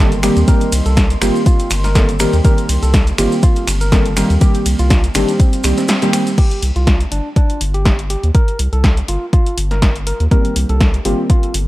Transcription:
Already playing: analog synth bass G1, tine electric piano G4, ambient pad A#4 D#5 C6
0.00 synth stab D#3 G3 A#3 C4 A4
0.12 closed hi-hat, maracas
0.23 synth stab D#3 G3 A#3 C4 G4, tine electric piano G4, finger snap, open hi-hat, ride, maracas
0.36 analog synth bass D#2, closed hi-hat, maracas
0.48 synth stab D#3 G3 A#3 C4 G4, tine electric piano A#4, kick, closed hi-hat, ride, maracas
0.61 closed hi-hat, maracas
0.72 analog synth bass C2, open hi-hat, ride, maracas
0.86 analog synth bass C2, tine electric piano A4, closed hi-hat, maracas
0.97 kick, snare, closed hi-hat, ride, maracas
1.10 closed hi-hat, maracas
1.22 analog synth bass G1, synth stab D#3 G3 A#3 C4 G4, tine electric piano F4, finger snap, open hi-hat, ride, maracas
1.36 maracas
1.46 tine electric piano F4, kick, closed hi-hat, ride, maracas
1.59 closed hi-hat, maracas
1.70 analog synth bass G1, finger snap, open hi-hat, ride, maracas
1.84 tine electric piano A#4, snare, closed hi-hat, maracas
1.95 synth stab D#3 G3 A#3 C4 A4, kick, snare, closed hi-hat, ride, maracas
2.09 closed hi-hat, maracas
2.19 synth stab D#3 G3 A#3 C4 G4, tine electric piano A#4, finger snap, open hi-hat, ride, maracas
2.33 analog synth bass D#2, closed hi-hat, maracas
2.45 synth stab D#3 G3 A#3 C4 G4, tine electric piano A#4, ambient pad F6, kick, closed hi-hat, ride, maracas
2.58 closed hi-hat, maracas
2.69 analog synth bass C2, open hi-hat, ride, maracas
2.83 analog synth bass C2, tine electric piano A4, closed hi-hat, maracas
2.94 kick, snare, closed hi-hat, ride, maracas
3.07 closed hi-hat, maracas
3.18 analog synth bass G1, synth stab D#3 G3 A#3 C4 G4, tine electric piano F4, finger snap, open hi-hat, ride, maracas
3.32 maracas
3.43 tine electric piano F4, kick, closed hi-hat, ride, maracas
3.56 closed hi-hat, maracas
3.67 analog synth bass G1, finger snap, open hi-hat, ride, maracas
3.81 tine electric piano A#4, closed hi-hat, maracas
3.92 synth stab D#3 G3 A#3 C4 A4, kick, snare, closed hi-hat, ride, maracas
4.05 closed hi-hat, maracas
4.17 synth stab D#3 G3 A#3 C4 G4, tine electric piano A#4, finger snap, open hi-hat, ride, maracas
4.30 analog synth bass D#2, closed hi-hat, maracas
4.41 synth stab D#3 G3 A#3 C4 G4, tine electric piano G4, kick, closed hi-hat, ride, maracas
4.54 closed hi-hat, maracas
4.66 analog synth bass C2, open hi-hat, ride, maracas
4.79 analog synth bass C2, tine electric piano F4, closed hi-hat, maracas
4.90 kick, snare, closed hi-hat, ride, maracas
5.04 closed hi-hat, maracas
5.15 analog synth bass G1, synth stab D#3 G3 A#3 C4 G4, tine electric piano D4, finger snap, open hi-hat, ride, maracas
5.28 closed hi-hat, maracas
5.39 tine electric piano C4, kick, closed hi-hat, ride, maracas
5.53 closed hi-hat, maracas
5.63 analog synth bass C2, synth stab D#3 G3 A#3 C4 G4, finger snap, open hi-hat, ride, maracas
5.78 tine electric piano C4, snare, closed hi-hat, maracas
5.88 snare, closed hi-hat, ride, maracas
6.02 synth stab D#3 G3 A#3 C4 G4, closed hi-hat, maracas
6.13 tine electric piano C4, finger snap, open hi-hat, ride, maracas
6.27 closed hi-hat, maracas
6.38 tine electric piano G4, kick, closed hi-hat, crash
6.51 closed hi-hat
6.62 analog synth bass C2, open hi-hat
6.76 analog synth bass C2, tine electric piano F4, closed hi-hat
6.87 kick, snare, closed hi-hat
7.01 closed hi-hat
7.12 analog synth bass G1, tine electric piano D4, open hi-hat
7.36 tine electric piano D4, kick, closed hi-hat
7.50 closed hi-hat
7.61 analog synth bass G1, open hi-hat
7.74 tine electric piano G4, closed hi-hat
7.85 kick, snare, closed hi-hat
7.99 closed hi-hat
8.10 tine electric piano G4, open hi-hat
8.23 analog synth bass D#2, closed hi-hat
8.35 tine electric piano A#4, kick, closed hi-hat
8.48 closed hi-hat
8.59 analog synth bass C2, open hi-hat
8.73 analog synth bass C2, tine electric piano A4, closed hi-hat
8.84 kick, snare, closed hi-hat
8.97 closed hi-hat
9.08 analog synth bass G1, tine electric piano F4, open hi-hat
9.33 tine electric piano F4, kick, closed hi-hat
9.46 closed hi-hat
9.58 analog synth bass G1, open hi-hat
9.71 tine electric piano A#4, snare, closed hi-hat
9.82 kick, snare, closed hi-hat
9.96 closed hi-hat
10.07 tine electric piano A#4, open hi-hat
10.20 analog synth bass D#2, closed hi-hat
10.31 synth stab D#3 G3 A#3 C4 G4, tine electric piano A#4, kick, closed hi-hat
10.45 closed hi-hat
10.56 analog synth bass C2, open hi-hat
10.69 analog synth bass C2, tine electric piano A4, closed hi-hat
10.81 kick, snare, closed hi-hat
10.94 closed hi-hat
11.05 analog synth bass G1, synth stab D#3 G3 A#3 C4 G4, tine electric piano F4, open hi-hat
11.30 tine electric piano F4, kick, closed hi-hat
11.43 closed hi-hat
11.54 analog synth bass G1, open hi-hat

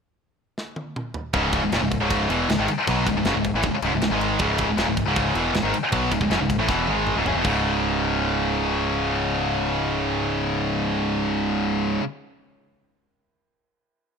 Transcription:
0.58 snare
0.76 high tom
0.96 mid tom
1.14 floor tom
1.33 picked electric bass C#1, distorted electric guitar C#2 G#2 C#3, kick, ride
1.53 kick, ride
1.63 picked electric bass C#1, distorted electric guitar C#2 G#2
1.72 picked electric bass D#1, distorted electric guitar D#2 A#2, snare, ride
1.81 picked electric bass C#1, distorted electric guitar C#2 G#2
1.91 kick, ride
2.01 picked electric bass C#1, distorted electric guitar C#2 G#2 C#3
2.10 kick, ride
2.29 picked electric bass E1, distorted electric guitar E2 B2 E3, ride
2.48 picked electric bass C#1, distorted electric guitar C#2 G#2, snare, ride
2.58 picked electric bass G#1, distorted electric guitar G#2 D#3
2.68 ride
2.87 picked electric bass B1, distorted electric guitar B2 F#3 B3, kick, ride
3.06 picked electric bass C#1, distorted electric guitar C#2 G#2, kick, ride
3.15 picked electric bass C#1, distorted electric guitar C#2 G#2
3.25 picked electric bass F#1, distorted electric guitar F#2 C#3, snare, ride
3.35 picked electric bass C#1, distorted electric guitar C#2 G#2
3.44 kick, ride
3.54 picked electric bass A1, distorted electric guitar A2 E3
3.63 picked electric bass C#1, distorted electric guitar C#2 G#2, kick, ride
3.73 muted picked electric bass stroke, muted distorted electric guitar stroke
3.82 picked electric bass C#1, distorted electric guitar C#2 G#2, ride
3.92 picked electric bass C#1, distorted electric guitar C#2 G#2
4.02 picked electric bass C#1, distorted electric guitar C#2 G#2, snare, ride
4.11 picked electric bass G#1, distorted electric guitar G#2 D#3 G#3
4.21 ride
4.39 picked electric bass C#1, distorted electric guitar C#2 G#2 C#3, kick, ride
4.58 kick, ride
4.67 picked electric bass C#1, distorted electric guitar C#2 G#2
4.76 picked electric bass D#1, distorted electric guitar D#2 A#2, snare, ride
4.87 picked electric bass C#1, distorted electric guitar C#2 G#2
4.97 kick, ride
5.06 picked electric bass C#1, distorted electric guitar C#2 G#2 C#3
5.16 kick, ride
5.35 picked electric bass E1, distorted electric guitar E2 B2 E3, ride
5.54 picked electric bass C#1, distorted electric guitar C#2 G#2, snare, ride
5.63 picked electric bass G#1, distorted electric guitar G#2 D#3
5.74 ride
5.92 picked electric bass B1, distorted electric guitar B2 F#3 B3, kick, ride
6.12 picked electric bass C#1, distorted electric guitar C#2 G#2, kick, ride
6.21 picked electric bass C#1, distorted electric guitar C#2 G#2, kick
6.30 picked electric bass F#1, distorted electric guitar F#2 C#3, snare, ride
6.40 picked electric bass C#1, distorted electric guitar C#2 G#2
6.50 kick, ride
6.58 picked electric bass A1, distorted electric guitar A2 E3
6.69 picked electric bass E1, distorted electric guitar E2 B2 E3, kick, snare
6.87 picked electric bass G#1, distorted electric guitar G#2 D#3 G#3, high tom
7.07 mid tom
7.16 picked electric bass C#1, distorted electric guitar C#2 G#2
7.25 picked electric bass F#1, distorted electric guitar F#2 C#3, floor tom
7.35 picked electric bass E1, distorted electric guitar E2 B2
7.43 picked electric bass C#1, distorted electric guitar C#2 G#2 C#3, kick, crash

